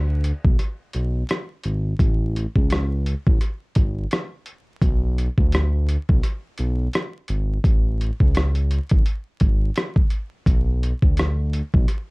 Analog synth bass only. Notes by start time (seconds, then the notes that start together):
Already playing: D2
0.45 B1
0.94 B1
1.65 G#1
2.00 A1
2.56 C#2
3.27 A1
3.77 G#1
4.82 B1
5.38 D2
6.10 B1
6.59 B1
7.29 G#1
7.64 A1
8.21 C#2
8.92 A1
9.41 G#1
10.47 B1
11.03 D2
11.74 B1